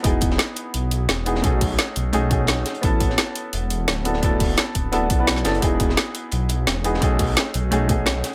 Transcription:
<<
  \new Staff \with { instrumentName = "Grand piano" } { \time 4/4 \key e \major \tempo 4 = 172 <b dis' e' fis' gis'>2.~ <b dis' e' fis' gis'>8 <b dis' e' fis' gis'>8 | <a cis' dis' fis' gis'>2 <a cis' dis' fis' gis'>8 <a cis' dis' fis' gis'>4. | <b cis' e' fis' a'>2.~ <b cis' e' fis' a'>8 <b d' e' fis' a'>8 | <b d' e' fis' a'>2 <b d' e' fis' a'>8 r16 <b d' e' fis' b'>8. <b d' e' fis' a'>8 |
<b dis' e' fis' gis'>2.~ <b dis' e' fis' gis'>8 <b dis' e' fis' gis'>8 | <a cis' dis' fis' gis'>2 <a cis' dis' fis' gis'>8 <a cis' dis' fis' gis'>4. | }
  \new Staff \with { instrumentName = "Detuned saw bass" } { \clef bass \time 4/4 \key e \major e,,4 r4 b,,4 e,,4 | b,,4 r8 b,,8 b,,4. r8 | a,,4 r4 e,,4 d,,4~ | d,,4 r8 d,,8 d,,8 b,,4 fis,,8 |
e,,4 r4 b,,4 e,,4 | b,,4 r8 b,,8 b,,4. r8 | }
  \new DrumStaff \with { instrumentName = "Drums" } \drummode { \time 4/4 <hh bd>8 <hh bd>16 sn16 <hh sn>8 hh8 hh8 hh8 <hh sn>8 hh16 sn16 | <hh bd>8 <hh hho bd>8 <hh sn>8 hh8 hh8 <hh bd>8 <hh sn>8 <hh sn>16 hh16 | <hh bd>8 <hh bd>16 sn16 <hh sn>8 hh8 hh8 hh8 <hh sn>8 hh16 sn16 | <hh bd>8 <hh hho bd>8 <hh sn>8 <hh bd>8 hh8 <hh bd>8 <hh sn>16 sn16 <hh sn>16 hh16 |
<hh bd>8 <hh bd>16 sn16 <hh sn>8 hh8 hh8 hh8 <hh sn>8 hh16 sn16 | <hh bd>8 <hh hho bd>8 <hh sn>8 hh8 hh8 <hh bd>8 <hh sn>8 <hh sn>8 | }
>>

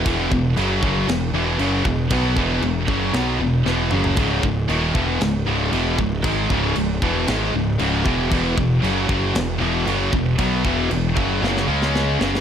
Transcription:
<<
  \new Staff \with { instrumentName = "Distorted electric guitar" } { \clef bass \time 4/4 \key e \major \tempo 4 = 116 <e, b, e>8 <e, b,>8 <fis, cis fis>8 <fis, cis fis>8 <e, b,>8 <e, b, e>8 <fis, cis fis>8 <e, b,>8 | <b, fis b>8 <e, b, e>8 <e, b,>8 <fis, cis fis>8 <b, fis b>8 <e, b,>8 <e, b, e>8 <fis, cis fis>8 | <cis, gis, cis>8 <cis, gis,>8 <dis, ais, dis>8 <e, b, e>8 <cis, gis,>8 <cis, gis, cis>8 <e, b, e>8 <cis, gis,>8 | <gis, dis gis>8 <cis, gis, cis>8 <cis, gis,>8 <e, b, e>8 <gis, dis gis>8 <cis, gis,>8 <cis, gis, cis>8 <e, b, e>8 |
<e, b, e>8 <e, b,>8 <fis, cis fis>8 <fis, cis fis>8 <e, b,>8 <e, b, e>8 <fis, cis fis>8 <e, b,>8 | <b, fis b>8 <e, b, e>8 <e, b,>8 <fis, cis fis>8 <fis, cis fis>8 <cis gis cis'>4 <fis, cis fis>8 | }
  \new Staff \with { instrumentName = "Distorted electric guitar" } { \clef bass \time 4/4 \key e \major <e, b, e>8 <e, b,>8 <fis, cis fis>8 <fis, cis fis>8 <e, b,>8 <e, b, e>8 <fis, cis fis>8 <e, b,>8 | <b, fis b>8 <e, b, e>8 <e, b,>8 <fis, cis fis>8 <b, fis b>8 <e, b,>8 <e, b, e>8 <fis, cis fis>8 | <cis, gis, cis>8 <cis, gis,>8 <dis, ais, dis>8 <e, b, e>8 <cis, gis,>8 <cis, gis, cis>8 <e, b, e>8 <cis, gis,>8 | <gis, dis gis>8 <cis, gis, cis>8 <cis, gis,>8 <e, b, e>8 <gis, dis gis>8 <cis, gis,>8 <cis, gis, cis>8 <e, b, e>8 |
<e, b, e>8 <e, b,>8 <fis, cis fis>8 <fis, cis fis>8 <e, b,>8 <e, b, e>8 <fis, cis fis>8 <e, b,>8 | <b, fis b>8 <e, b, e>8 <e, b,>8 <fis, cis fis>8 <fis, cis fis>8 <cis gis cis'>4 <fis, cis fis>8 | }
  \new Staff \with { instrumentName = "Distorted electric guitar" } { \clef bass \time 4/4 \key e \major <e, b, e>8 <e, b,>8 <fis, cis fis>8 <fis, cis fis>8 <e, b,>8 <e, b, e>8 <fis, cis fis>8 <e, b,>8 | <b, fis b>8 <e, b, e>8 <e, b,>8 <fis, cis fis>8 <b, fis b>8 <e, b,>8 <e, b, e>8 <fis, cis fis>8 | <cis, gis, cis>8 <cis, gis,>8 <dis, ais, dis>8 <e, b, e>8 <cis, gis,>8 <cis, gis, cis>8 <e, b, e>8 <cis, gis,>8 | <gis, dis gis>8 <cis, gis, cis>8 <cis, gis,>8 <e, b, e>8 <gis, dis gis>8 <cis, gis,>8 <cis, gis, cis>8 <e, b, e>8 |
<e, b, e>8 <e, b,>8 <fis, cis fis>8 <fis, cis fis>8 <e, b,>8 <e, b, e>8 <fis, cis fis>8 <e, b,>8 | <b, fis b>8 <e, b, e>8 <e, b,>8 <fis, cis fis>8 <fis, cis fis>8 <cis gis cis'>4 <fis, cis fis>8 | }
  \new Staff \with { instrumentName = "Picked electric bass" } { \clef bass \time 4/4 \key e \major e,,8 e,,8 fis,,8 fis,,8 e,,8 e,,8 fis,,8 e,,8 | b,,8 e,,8 e,,8 fis,,8 b,,8 e,,8 e,,8 fis,,8 | cis,,8 cis,,8 dis,,8 e,,8 cis,,8 cis,,8 e,,8 cis,,8 | gis,,8 cis,,8 cis,,8 e,,8 gis,,8 cis,,8 cis,,8 e,,8 |
e,,8 e,,8 fis,,8 fis,,8 e,,8 e,,8 fis,,8 e,,8 | b,,8 e,,8 e,,8 fis,,8 fis,,8 cis,4 fis,,8 | }
  \new DrumStaff \with { instrumentName = "Drums" } \drummode { \time 4/4 <cymc bd>8 bd8 cymc8 bd8 <cymc sn>4 cymc8 bd8 | <cymc bd>8 bd8 cymc8 bd8 <cymc sn>4 sn8 toml16 tomfh16 | <cymc bd>8 bd8 cymc8 bd8 <cymc sn>4 cymc8 bd8 | <cymc bd>8 bd8 cymc8 bd8 <cymc sn>4 cymc8 bd8 |
<cymc bd>8 bd8 cymc8 bd8 <cymc sn>4 cymc8 bd8 | <cymc bd>8 bd8 cymc8 bd8 sn16 sn8 sn16 sn8 sn16 sn16 | }
>>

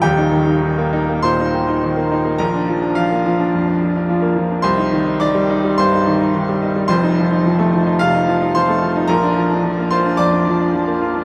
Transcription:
<<
  \new Staff \with { instrumentName = "Grand piano" } { \time 4/4 \key ees \major \tempo 4 = 107 <g' g''>2 <c'' c'''>2 | <bes' bes''>4 <f' f''>2~ <f' f''>8 r8 | <c'' c'''>4 <d'' d'''>4 <c'' c'''>2 | <c'' c'''>2 <f' f''>4 <c'' c'''>4 |
<bes' bes''>4. <c'' c'''>8 <d'' d'''>2 | }
  \new Staff \with { instrumentName = "Grand piano" } { \time 4/4 \key ees \major <ees,, ees,>16 ees'16 ees16 ees'16 ees16 bes16 ees'16 bes16 bes,16 ees'16 ees16 ees'16 ees16 bes16 ees'16 bes16 | bes,,16 d'16 f16 d'16 f16 bes16 f16 d'16 f,16 d'16 f16 d'16 f16 bes16 f16 d'16 | c,16 ees'16 ees16 ees'16 ees16 g16 ees'16 g16 g,16 ees'16 ees16 ees'16 ees16 g16 ees'16 g16 | <f,, f,>16 ees'16 f16 ees'16 f16 a16 f16 ees'16 c16 ees'16 f16 ees'16 f16 a16 f16 ees'16 |
bes,,16 d'16 f16 d'16 f16 bes16 f'16 d'16 f,16 d'16 f16 d'16 f16 bes16 f'16 d'16 | }
>>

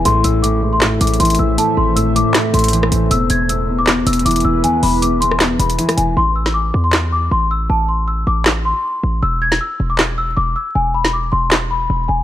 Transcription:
<<
  \new Staff \with { instrumentName = "Celesta" } { \time 4/4 \key a \minor \tempo 4 = 157 c'''8 e'''8 d'''8. c'''16 r8 d'''8 c'''8 e'''8 | a''8 c'''8 e'''8 d'''8 r8 c'''4. | e'''8 gis'''8 e'''8. d'''16 r8 e'''8 d'''8 e'''8 | gis''8 b''8 d'''8 c'''8 r8 b''4 gis''8 |
c'''8 e'''8 d'''8. c'''16 r8 d'''8 c'''8 e'''8 | a''8 c'''8 e'''8 d'''8 r8 c'''4. | e'''8 gis'''8 e'''8. d'''16 r8 e'''8 d'''8 e'''8 | gis''8 b''8 d'''8 c'''8 r8 b''4 gis''8 | }
  \new Staff \with { instrumentName = "Ambient pad" } { \time 4/4 \key a \minor <a a' c'' e''>1~ | <a a' c'' e''>1 | <e e' gis' b'>1~ | <e e' gis' b'>1 |
r1 | r1 | r1 | r1 | }
  \new Staff \with { instrumentName = "Grand piano" } { \clef bass \time 4/4 \key a \minor a,4 a,8 a,8 a,8 a,8 e4 | a4 a,8 a,8 a,8 a,8 e4 | e,4 e,8 e,8 e,8 e,8 e4 | e,4 e,8 e,8 e,8 e,8 e4 |
r1 | r1 | r1 | r1 | }
  \new Staff \with { instrumentName = "808-style bass" } { \clef bass \time 4/4 \key a \minor a,,8 a,,2 a,,8 a,,8 a,,8 | r8 gis,,4~ gis,,16 r8. a,,4 a,,8 | e,,8 e,,2 e,,8 e,,8 e,,8 | r8 e,,2 e,,8 r8 e,,8 |
a,,4. e,4. a,,4 | a,,4. a,,4~ a,,16 r8. a,,8 | e,,4 r8 e,,4. e,,8 r8 | e,,4. e,,4. e,,8 e,,8 | }
  \new DrumStaff \with { instrumentName = "Drums" } \drummode { \time 4/4 hh8 hh8 hh4 \tuplet 3/2 { <hc hh sn>16 r16 r16 hh16 hh16 hh16 } hh32 hh32 hh32 hh8 r32 | hh4 hh8 hh8 <hc hh sn>8 hh32 hh32 hh32 hh32 hh16 ss16 hh8 | hh8 hh8 hh4 \tuplet 3/2 { <hc hh sn>16 r16 r16 hh16 hh16 hh16 } hh32 hh32 hh32 hh8 r32 | hh8 hho8 hh8 hh16 ss16 <hc hh sn>8 hh16 hh16 hh16 <hh ss>16 hh8 |
r8. sn16 r4 <hc sn>4 r4 | r4 r4 <hc sn>4 r4 | r8. sn16 r4 <hc sn>4 r4 | r8. sn16 r4 <hc sn>4 r4 | }
>>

